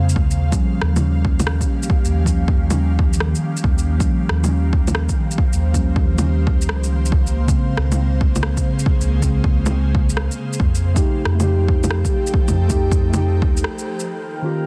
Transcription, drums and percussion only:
0.09 shaker
0.16 kick
0.31 shaker
0.52 kick, shaker
0.82 cross-stick
0.96 low bongo, shaker
1.25 kick
1.40 low bongo, shaker
1.47 cross-stick
1.61 kick, shaker
1.83 shaker
1.90 kick
2.05 shaker
2.26 kick, shaker
2.48 kick
2.70 low bongo, shaker
2.99 kick
3.13 shaker
3.20 cross-stick
3.35 shaker
3.57 shaker
3.64 kick
3.78 shaker
4.00 kick, shaker
4.29 cross-stick
4.44 low bongo, shaker
4.73 kick
4.87 low bongo, shaker
4.95 cross-stick
5.09 kick, shaker
5.31 shaker
5.38 kick
5.53 shaker
5.74 kick, shaker
5.96 kick
6.18 low bongo, shaker
6.47 kick
6.62 shaker
6.69 cross-stick
6.84 shaker
7.06 shaker
7.12 kick
7.27 shaker
7.48 kick, shaker
7.77 cross-stick
7.92 low bongo, shaker
8.21 kick
8.36 low bongo, shaker
8.43 cross-stick
8.57 kick, shaker
8.79 shaker
8.86 kick
9.01 shaker
9.22 kick, shaker
9.44 kick
9.66 low bongo, shaker
9.95 kick
10.10 shaker
10.17 cross-stick
10.31 shaker
10.53 shaker
10.60 kick
10.75 shaker
10.96 kick, shaker
11.25 cross-stick
11.40 low bongo, shaker
11.68 kick
11.84 low bongo, shaker
11.91 cross-stick
12.05 kick, shaker
12.27 shaker
12.34 kick
12.48 low bongo, shaker
12.70 kick, shaker
12.92 kick, shaker
13.14 low bongo, shaker
13.42 kick
13.57 shaker
13.64 cross-stick
13.79 shaker
14.00 shaker

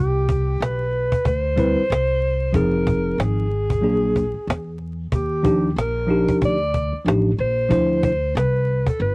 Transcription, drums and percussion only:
0.29 cajon bass
0.62 cajon slap
0.93 cajon slap
1.12 cajon bass
1.25 cajon bass
1.58 cajon bass
1.92 cajon slap
2.20 cajon slap
2.54 cajon bass
2.87 cajon bass
3.20 cajon slap
3.50 cajon slap
3.70 cajon bass
3.83 cajon slap
4.16 cajon bass
4.50 cajon slap
4.78 cajon slap
5.12 cajon bass
5.45 cajon bass
5.78 cajon slap
6.09 cajon slap
6.28 cajon bass
6.42 cajon bass
6.74 cajon bass
7.08 cajon slap
7.37 cajon slap
7.71 cajon bass
8.03 cajon bass
8.37 cajon slap
8.67 cajon slap
8.86 cajon bass
8.99 cajon slap

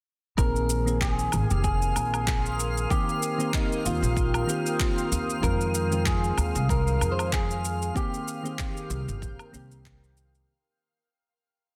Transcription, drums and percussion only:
0.38 kick, shaker
0.56 shaker
0.70 shaker
0.88 shaker
1.01 kick, clap, shaker
1.19 shaker
1.32 low woodblock, shaker
1.51 shaker
1.64 kick, shaker
1.82 shaker
1.96 low woodblock, shaker
2.14 low woodblock, shaker
2.27 kick, clap, shaker
2.46 shaker
2.60 shaker
2.77 shaker
2.90 kick, shaker
3.09 shaker
3.23 shaker
3.40 shaker
3.53 kick, clap, shaker
3.72 shaker
3.86 shaker
4.04 shaker
4.17 kick, shaker
4.34 low woodblock, shaker
4.49 shaker
4.66 shaker
4.80 kick, clap, shaker
4.98 shaker
5.12 shaker
5.30 shaker
5.43 kick, shaker
5.61 shaker
5.75 shaker
5.92 shaker
6.06 kick, clap, shaker
6.24 shaker
6.38 low woodblock, shaker
6.56 shaker
6.69 kick, shaker
6.87 shaker
7.01 low woodblock, shaker
7.19 low woodblock, shaker
7.33 kick, clap, shaker
7.51 shaker
7.65 shaker
7.82 shaker
7.96 kick, shaker
8.14 shaker
8.28 shaker
8.46 shaker
8.59 kick, clap, shaker
8.77 shaker
8.91 shaker
9.09 shaker
9.22 kick, shaker
9.39 low woodblock, shaker
9.54 shaker
9.72 shaker
9.85 kick, clap, shaker
10.04 shaker
10.17 shaker
10.35 shaker

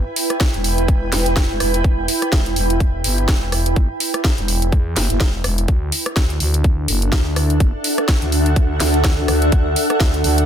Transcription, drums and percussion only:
0.16 open hi-hat
0.30 cross-stick, closed hi-hat
0.40 kick, snare, closed hi-hat
0.54 closed hi-hat
0.64 open hi-hat
0.78 closed hi-hat
0.88 kick, closed hi-hat
1.12 snare, open hi-hat
1.26 closed hi-hat
1.36 kick, snare, closed hi-hat
1.60 cross-stick, open hi-hat
1.74 closed hi-hat
1.84 kick, closed hi-hat
2.08 open hi-hat
2.22 cross-stick, closed hi-hat
2.32 kick, snare, closed hi-hat
2.46 closed hi-hat
2.56 open hi-hat
2.70 closed hi-hat
2.80 kick, closed hi-hat
3.04 open hi-hat
3.18 closed hi-hat
3.28 kick, snare, closed hi-hat
3.52 cross-stick, open hi-hat
3.66 closed hi-hat
3.76 kick, closed hi-hat
4.00 open hi-hat
4.14 cross-stick, closed hi-hat
4.24 kick, snare, closed hi-hat
4.38 closed hi-hat
4.48 open hi-hat
4.62 closed hi-hat
4.72 kick, closed hi-hat
4.96 snare, open hi-hat
5.10 closed hi-hat
5.20 kick, snare, closed hi-hat
5.44 cross-stick, open hi-hat
5.58 closed hi-hat
5.68 kick, closed hi-hat
5.92 open hi-hat
6.06 cross-stick, closed hi-hat
6.16 kick, snare, closed hi-hat
6.30 closed hi-hat
6.40 open hi-hat
6.54 closed hi-hat
6.64 kick, closed hi-hat
6.88 open hi-hat
7.02 closed hi-hat
7.12 kick, snare, closed hi-hat
7.36 cross-stick, open hi-hat
7.50 closed hi-hat
7.60 kick, closed hi-hat
7.84 open hi-hat
7.98 cross-stick, closed hi-hat
8.08 kick, snare, closed hi-hat
8.22 closed hi-hat
8.32 open hi-hat
8.46 closed hi-hat
8.56 kick, closed hi-hat
8.80 snare, open hi-hat
8.94 closed hi-hat
9.04 kick, snare, closed hi-hat
9.28 cross-stick, open hi-hat
9.42 closed hi-hat
9.52 kick, closed hi-hat
9.76 open hi-hat
9.90 cross-stick, closed hi-hat
10.00 kick, snare, closed hi-hat
10.14 closed hi-hat
10.24 open hi-hat
10.38 closed hi-hat

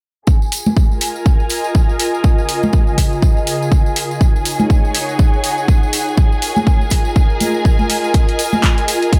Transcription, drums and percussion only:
0.27 kick, tambourine
0.42 tambourine
0.52 open hi-hat, tambourine
0.66 tambourine, high conga
0.77 kick, tambourine
0.92 tambourine
1.01 open hi-hat, tambourine
1.16 tambourine
1.26 kick, tambourine
1.40 tambourine
1.49 open hi-hat, tambourine
1.64 tambourine
1.75 kick, tambourine
1.89 tambourine
2.00 open hi-hat, tambourine
2.14 tambourine
2.24 kick, tambourine
2.38 tambourine
2.49 open hi-hat, tambourine
2.63 tambourine, high conga
2.73 kick, tambourine
2.87 tambourine
2.98 kick, open hi-hat, tambourine
3.13 tambourine
3.22 kick, tambourine
3.37 tambourine
3.47 open hi-hat, tambourine
3.62 tambourine
3.72 kick, tambourine
3.86 tambourine
3.96 open hi-hat, tambourine
4.11 tambourine
4.21 kick, tambourine
4.36 tambourine
4.45 open hi-hat, tambourine
4.60 tambourine, high conga
4.70 kick, tambourine
4.85 tambourine
4.95 open hi-hat, tambourine
5.09 tambourine
5.19 kick, tambourine
5.33 tambourine
5.44 open hi-hat, tambourine
5.58 tambourine
5.68 kick, tambourine
5.83 tambourine
5.93 open hi-hat, tambourine
6.08 tambourine
6.17 kick, tambourine
6.32 tambourine
6.42 open hi-hat, tambourine
6.56 tambourine, high conga
6.67 kick, tambourine
6.81 tambourine
6.90 kick, open hi-hat, tambourine
7.05 tambourine
7.16 kick, tambourine
7.30 tambourine
7.40 open hi-hat, tambourine, high conga
7.54 tambourine
7.65 kick, tambourine
7.79 tambourine, high conga
7.90 open hi-hat, tambourine
8.04 tambourine
8.14 kick, closed hi-hat, tambourine
8.28 closed hi-hat, tambourine
8.39 open hi-hat, tambourine
8.53 tambourine, high conga
8.63 kick, clap, closed hi-hat, tambourine
8.78 closed hi-hat, tambourine
8.88 open hi-hat, tambourine
9.02 closed hi-hat, tambourine
9.13 kick, closed hi-hat, tambourine

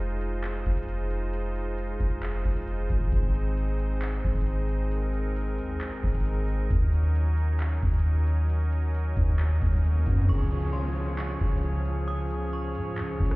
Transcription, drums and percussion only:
0.21 closed hi-hat
0.43 clap, closed hi-hat
0.66 kick, closed hi-hat
0.72 closed hi-hat
0.77 closed hi-hat
0.83 closed hi-hat
0.88 closed hi-hat
1.10 closed hi-hat
1.33 closed hi-hat
1.56 closed hi-hat
1.78 closed hi-hat
2.00 kick, closed hi-hat
2.23 clap, closed hi-hat
2.45 kick, closed hi-hat
2.51 closed hi-hat
2.56 closed hi-hat
2.62 closed hi-hat
2.67 closed hi-hat
2.90 kick, closed hi-hat
3.12 kick, closed hi-hat
3.35 closed hi-hat
3.57 closed hi-hat
3.79 closed hi-hat
4.02 clap, closed hi-hat
4.24 kick, closed hi-hat
4.30 closed hi-hat
4.35 closed hi-hat
4.41 closed hi-hat
4.46 closed hi-hat
4.69 closed hi-hat
4.91 closed hi-hat
5.14 closed hi-hat
5.36 closed hi-hat
5.58 closed hi-hat
5.81 clap, closed hi-hat
6.03 kick, closed hi-hat
6.09 closed hi-hat
6.15 closed hi-hat
6.20 closed hi-hat
6.26 closed hi-hat
6.48 closed hi-hat
6.70 kick, closed hi-hat
6.93 closed hi-hat
7.15 closed hi-hat
7.37 closed hi-hat
7.60 clap, closed hi-hat
7.82 kick, closed hi-hat
7.88 closed hi-hat
7.94 closed hi-hat
7.99 closed hi-hat
8.05 closed hi-hat
8.27 closed hi-hat
8.50 closed hi-hat
8.72 closed hi-hat
8.94 closed hi-hat
9.17 kick, closed hi-hat
9.39 clap, closed hi-hat
9.62 kick, closed hi-hat
9.67 closed hi-hat
9.73 closed hi-hat
9.78 closed hi-hat
9.84 closed hi-hat
10.06 kick, closed hi-hat
10.29 kick, closed hi-hat, crash
10.51 closed hi-hat
10.74 closed hi-hat
10.96 closed hi-hat
11.18 clap, closed hi-hat
11.41 kick, closed hi-hat
11.46 closed hi-hat
11.52 closed hi-hat
11.57 closed hi-hat
11.63 closed hi-hat
11.85 closed hi-hat
12.08 closed hi-hat
12.30 closed hi-hat
12.53 closed hi-hat
12.75 closed hi-hat
12.97 clap, closed hi-hat
13.20 kick, closed hi-hat
13.25 closed hi-hat
13.31 cross-stick, closed hi-hat

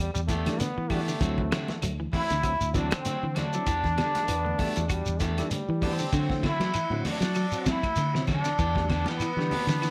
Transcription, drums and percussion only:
0.15 shekere
0.29 kick, closed hi-hat, high conga, shekere
0.45 snare, closed hi-hat, high conga, claves, shekere
0.59 snare, closed hi-hat, high conga, shekere
0.90 kick, open hi-hat, low conga, claves, shekere
1.08 shekere
1.21 kick, closed hi-hat, shekere
1.38 kick, low conga
1.51 snare, closed hi-hat, claves
1.68 snare, high conga, shekere
1.82 closed hi-hat, claves, shekere
2.13 kick, open hi-hat, high conga, low conga, shekere
2.30 snare, closed hi-hat, shekere
2.43 kick, closed hi-hat, claves, shekere
2.61 shekere
2.74 kick, closed hi-hat, high conga, shekere
2.91 snare, closed hi-hat, claves, shekere
3.05 closed hi-hat, high conga, shekere
3.36 snare, closed hi-hat, high conga, low conga, claves, shekere
3.53 shekere
3.67 kick, closed hi-hat, shekere
3.84 kick, snare, low conga
3.98 snare, closed hi-hat, claves
4.15 snare, closed hi-hat, high conga, shekere
4.28 closed hi-hat, claves, shekere
4.46 high conga
4.59 kick, open hi-hat, high conga, low conga, shekere
4.76 closed hi-hat, shekere
4.89 kick, closed hi-hat, claves, shekere
5.06 shekere
5.20 kick, snare, closed hi-hat, high conga, shekere
5.38 snare, closed hi-hat, high conga, claves, shekere
5.51 closed hi-hat, high conga, shekere
5.82 kick, open hi-hat, high conga, low conga, claves, shekere
5.98 shekere
6.13 kick, snare, ride bell, shekere
6.30 kick, snare, high conga
6.43 kick, snare, ride bell, claves
6.61 snare, ride bell, high conga, shekere
6.74 ride bell, claves, shekere
6.92 high conga
7.05 open hi-hat, high conga, low conga, shekere
7.22 snare, ride bell, shekere
7.35 ride bell, claves, shekere
7.52 shekere
7.66 kick, snare, ride bell, high conga, shekere
7.83 kick, ride bell, high conga, claves, shekere
7.96 ride bell, high conga, shekere
8.15 snare
8.27 kick, snare, ride bell, low conga, claves, shekere
8.44 snare, ride bell, shekere
8.59 kick, ride bell, shekere
8.75 kick, snare, high conga, low conga
8.89 kick, snare, ride bell, claves
9.06 snare, ride bell, high conga, shekere
9.20 ride bell, claves, shekere
9.40 snare
9.51 open hi-hat, high conga, low conga, shekere
9.68 snare, ride bell, shekere
9.82 snare, ride bell, claves, shekere

